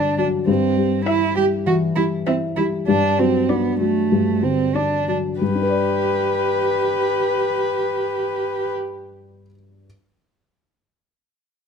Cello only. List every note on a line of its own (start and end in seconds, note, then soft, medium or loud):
0.00 0.18 D4 medium
0.18 0.26 D4 medium
0.48 1.05 C4 medium
1.06 1.36 E4 medium
1.36 1.44 G4 medium
1.67 1.75 F#4 medium
1.96 2.04 E4 medium
2.27 2.35 C4 medium
2.57 2.65 E4 medium
2.87 3.20 D4 medium
3.19 3.51 C4 medium
3.50 3.80 B3 medium
3.81 4.45 A3 medium
4.43 4.77 C4 medium
4.75 5.08 D4 soft
5.09 5.17 D4 soft
5.41 8.71 G4 soft